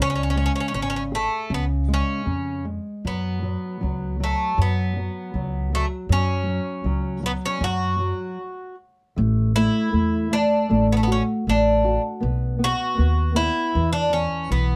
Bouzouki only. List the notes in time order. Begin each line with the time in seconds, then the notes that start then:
0.02 C#4
0.10 C#4
0.16 C#4
0.23 C#4
0.30 C#4
0.37 C#4
0.46 C#4
0.56 C#4
0.60 C#4
0.68 C#4
0.74 C#4
0.82 C#4
0.90 C#4
0.96 C#4
1.15 A3
1.54 B3
1.94 C#4
3.07 B3
4.24 A3
4.62 B3
5.75 A3
6.12 C#4
7.26 B3
7.46 C#4
7.64 F#4
9.56 E4
10.33 D4
10.92 B3
10.97 A3
11.03 B3
11.12 C#4
11.49 D4
12.64 F#4
13.36 E4
13.93 D4
14.13 C#4
14.52 B3